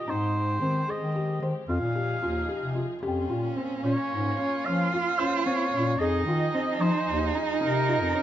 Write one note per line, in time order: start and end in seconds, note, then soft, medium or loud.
0.00 1.64 G4 medium
0.00 0.11 D#5 medium
0.04 0.57 G#2 medium
0.04 1.66 G#3 medium
0.04 1.66 C4 soft
0.04 0.46 D#4 medium
0.09 0.92 C5 medium
0.61 0.85 D#3 medium
0.61 0.81 C4 medium
0.88 1.07 G#4 medium
0.88 1.43 D#5 medium
1.01 1.37 D#3 medium
1.16 1.34 G4 medium
1.41 1.53 D#3 medium
1.41 1.61 C5 medium
1.67 1.80 F2 medium
1.67 3.01 F3 medium
1.67 3.01 D#4 medium
1.67 1.88 F4 medium
1.67 3.01 G#4 medium
1.67 2.73 F5 medium
1.81 2.18 A#2 medium
1.95 2.15 G4 medium
2.22 2.47 D#2 medium
2.22 2.42 F4 medium
2.49 2.68 G4 medium
2.62 2.87 C3 medium
2.75 2.95 F4 medium
3.02 3.27 F2 medium
3.02 5.97 A#3 medium
3.02 4.39 C#4 medium
3.02 5.97 C#4 medium
3.02 5.97 F4 medium
3.02 3.22 G4 medium
3.08 3.60 G5 soft
3.30 3.54 A#2 medium
3.30 3.49 F4 medium
3.56 3.76 C4 medium
3.83 3.96 A#2 medium
3.83 4.23 C#4 medium
3.83 4.67 C#5 medium
4.11 4.35 G#2 medium
4.37 4.58 C#4 medium
4.37 5.99 F4 loud
4.65 4.89 F3 medium
4.65 4.85 C#4 medium
4.65 5.20 F5 medium
4.94 5.12 F4 medium
5.19 5.39 C#4 medium
5.19 5.45 C5 medium
5.46 5.65 C4 medium
5.46 6.01 C#5 medium
5.73 5.97 A#2 medium
5.73 5.93 C#4 medium
5.99 6.24 F2 medium
5.99 8.22 F3 medium
5.99 8.22 D#4 loud
5.99 8.22 D#4 medium
5.99 8.22 G#4 medium
5.99 6.20 G#4 medium
5.99 6.82 D#5 medium
6.26 6.50 D#3 medium
6.26 6.47 F4 medium
6.54 6.73 C4 medium
6.80 6.92 F3 medium
6.80 7.19 D#4 medium
6.80 7.35 C5 medium
7.08 7.32 D#2 medium
7.34 7.54 D#4 medium
7.61 8.03 C3 medium
7.61 7.80 D#4 medium
7.61 8.22 A#4 medium
7.88 8.08 F4 medium
8.02 8.14 F2 medium
8.14 8.22 C#4 medium